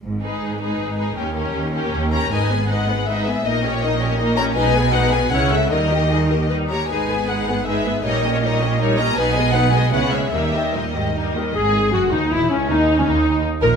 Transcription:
X:1
M:3/4
L:1/16
Q:1/4=158
K:G#m
V:1 name="Violin section"
z2 B4 B4 B2 | A2 A4 A4 [Aa]2 | g4 f4 e4 | d3 c d4 z2 a2 |
g4 f2 g2 f2 e2 | d8 z2 a2 | g4 f4 e4 | d3 c d4 z2 a2 |
g4 f2 g2 f2 e2 | e4 d6 z2 | G4 F2 D2 E2 C2 | D3 C D4 z2 A2 |]
V:2 name="Violin section"
z2 G4 G4 G2 | =G2 G4 G4 G2 | [Bd]2 [GB]2 [Bd]2 [GB]2 [Bd]2 [GB]2 | [Ad]2 [=Gc]2 [Ad]2 [Gc]2 [Ad]2 [Gc]2 |
[Bd]2 [GB]2 [Bd]2 [GB]2 c2 [=Ae]2 | A2 [=Gd]2 ^G2 A2 B2 c2 | [GB]2 [GB]2 [GB]2 [GB]2 [GB]2 [GB]2 | [Ac]2 [=Gd]2 [Ac]2 [Gd]2 [Ac]2 [Gd]2 |
B2 [Gd]2 B2 [Gd]2 [EB]2 [Gc]2 | [DA]2 [=Gd]2 [DA]2 [Gd]2 [DA]2 [Gd]2 | G4 F2 D2 E2 C2 | D3 C D4 z2 A2 |]
V:3 name="Clarinet"
z12 | z12 | z12 | z12 |
z12 | z12 | z12 | z12 |
z12 | z8 z2 A2 | G4 F2 D2 E2 C2 | D3 C D4 z2 A2 |]
V:4 name="Viola section"
z2 D4 D4 D2 | C2 C4 C4 C2 | [G,D]2 B,2 [G,D]2 B,2 [G,D]2 B,2 | [A,D]2 C2 [A,D]2 C2 [A,D]2 C2 |
[G,D]2 B,2 [G,D]2 B,2 [CE]2 [=A,C]2 | [=G,D]2 [A,=G]2 [G,D]2 [A,G]2 [G,D]2 [A,G]2 | [G,D]2 B,2 [G,D]2 B,2 [G,D]2 B,2 | [=G,D]2 [A,C]2 [G,D]2 [A,C]2 [G,D]2 [A,C]2 |
[B,D]2 [G,B,]2 [B,D]2 [G,B,]2 [B,C]2 [G,B,]2 | [=G,A,]2 [D,G,]2 [G,A,]2 [D,G,]2 [G,A,]2 [D,G,]2 | G4 F2 D2 E2 C2 | D3 C D4 z2 A2 |]
V:5 name="Cello section" clef=bass
G,,4 G,,4 G,,4 | D,,4 D,,4 D,,4 | G,,12 | A,,12 |
B,,8 C,4 | D,8- D,2 z2 | G,,12 | A,,12 |
B,,8 C,4 | D,,4 A,,2 G,,2 =G,,2 D,,2 | G,,4 F,,2 D,,2 E,,2 C,,2 | D,,3 C,, D,,4 z2 A,,2 |]
V:6 name="Double bass section" clef=bass
G,,,4 G,,,4 G,,,4 | D,,4 D,,4 D,,4 | G,,,12 | A,,,12 |
B,,,8 C,,4 | D,,8- D,,2 z2 | G,,,12 | A,,,12 |
B,,,8 C,,4 | D,,8- D,,2 z2 | G,,,4 F,,,2 D,,2 E,,,2 C,,2 | D,,3 z D,,4 z2 A,,,2 |]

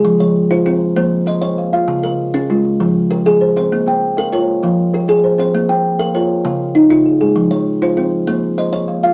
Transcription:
X:1
M:12/8
L:1/8
Q:3/8=131
K:Bbdor
V:1 name="Kalimba"
A d3 F3 z c3 f- | f B3 D3 z G3 c- | c g3 B3 z G3 c- | c g3 B3 z E3 A- |
A d3 F3 z c3 f |]
V:2 name="Kalimba"
F,2 z F2 z B,2 z d2 z | D,2 z D2 z F,2 z A2 z | B,2 z B2 z F,2 z A2 z | B,2 z B2 z D,2 z F2 z |
F,2 z F2 z B,2 z d2 z |]
V:3 name="Kalimba"
A2 z c A2 c2 e2 f2- | f z2 A F2 A2 B2 c c- | c2 z f d2 f2 B2 c c- | c2 z f d2 f2 G2 A A- |
A2 z c3 z2 e2 f f |]
V:4 name="Kalimba"
A, F,2 z C2 F, z2 B,2 F- | F D,2 z A,2 D, z2 F,2 C- | C B,2 z F2 B, z2 F,2 C- | C B,2 z F2 B, z2 D,2 A,- |
A, F,2 z C2 F, z2 B,2 F |]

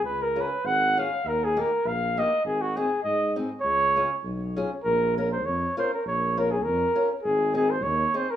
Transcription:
X:1
M:2/4
L:1/16
Q:"Swing" 1/4=100
K:Db
V:1 name="Flugelhorn"
_c B c2 g2 f2 | B A B2 f2 e2 | A G A2 e2 z2 | d4 z4 |
[K:Bbm] B2 B c d2 c B | d2 B A B3 z | A2 A c d2 c B |]
V:2 name="Steel-string acoustic guitar"
z2 [DFA]2 z2 [DFA]2 | z2 [B,E=G]2 z2 [B,EG]2 | z2 [CEA]2 z2 [CEA]2 | z2 [DFA]2 z2 [DFA]2 |
[K:Bbm] z2 [DFB]2 z2 [DFB]2 | z2 [DFB]2 z2 [DFB]2 | z2 [CEA]2 z2 [CEA]2 |]
V:3 name="Tuba" clef=bass
D,,4 A,,,4 | E,,4 B,,,4 | A,,,4 A,,4 | D,,4 _C,,4 |
[K:Bbm] B,,,4 F,,2 z2 | B,,,4 F,,2 z2 | A,,,4 E,,2 z2 |]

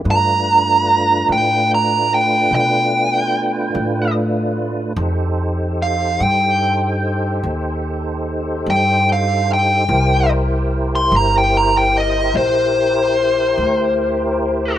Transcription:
X:1
M:12/8
L:1/16
Q:3/8=49
K:Gdor
V:1 name="Lead electric guitar"
b6 g2 b2 g2 g8 z4 | z4 f2 g12 g2 f2 g2- | g2 z3 c' b g b g _e2 c12 |]
V:2 name="Tonewheel organ"
[A,DF=B]24 | [_EGAc]24 | [EGBc]24 |]
V:3 name="Upright bass" clef=bass
G,,6 A,,6 =B,,6 A,,6 | F,,6 G,,6 _E,,6 G,,6 | C,,6 G,,,6 B,,,6 D,,6 |]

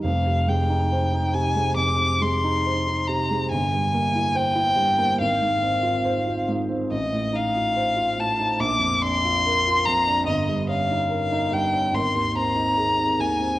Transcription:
X:1
M:4/4
L:1/16
Q:1/4=71
K:Fdor
V:1 name="Violin"
f2 g4 a2 d'2 c'4 b2 | a4 g4 f6 z2 | e2 f4 =a2 d'2 c'4 b2 | e2 f4 g2 c'2 b4 a2 |]
V:2 name="Grand piano"
[F,,,F,,] C, A, E c E C, A, F,, C, A, E c E C, A, | G,,, G,, B, =E c E G,, B, A,,, A,, C F c F A,, C | =A,,, =A,, E F c F A,, E B,,, F,, D F B F F,, D | G,,, G,, _D E B E G,, D A,,, E,, C E A E E,, C |]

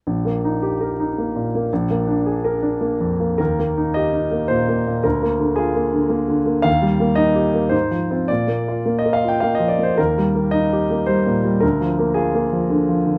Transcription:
X:1
M:3/4
L:1/16
Q:1/4=110
K:Eb
V:1 name="Grand piano"
z12 | z12 | B4 e4 c4 | B4 A6 z2 |
f4 e4 c4 | d4- d e f g f e d c | B4 e4 c4 | B4 A6 z2 |]
V:2 name="Grand piano"
(3B,,,2 B,2 E2 (3G2 B2 E2 (3B,2 B,,2 B,2 | (3B,,,2 B,2 D2 (3A2 B2 D2 (3B,2 F,,2 B,2 | (3E,,2 B,2 E2 (3G2 E2 B,2 (3B,,2 B,2 B,,2 | (3D,,2 B,2 D,2 (3F2 B,2 D,2 (3B,2 D,2 B,2 |
(3E,,2 G,2 B,2 (3E2 G2 B,2 (3A,,2 F,2 [CF]2 | (3B,,2 B,2 F2 (3B,2 B2 F2 (3B,2 F,2 B,2 | (3E,,2 G,2 B,2 (3E2 G2 B,2 (3G,2 B,,2 G,2 | (3D,,2 F,2 B,2 (3F2 B,2 F,2 (3D,2 F,2 D,2 |]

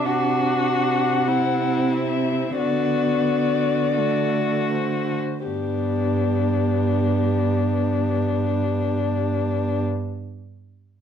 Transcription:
X:1
M:4/4
L:1/8
Q:1/4=43
K:G
V:1 name="Violin"
f3 e d3 c | G8 |]
V:2 name="Violin"
F2 E2 F2 F2 | D8 |]
V:3 name="Viola"
D2 C2 B,2 A,2 | B,8 |]
V:4 name="Cello" clef=bass
C,4 D,4 | G,,8 |]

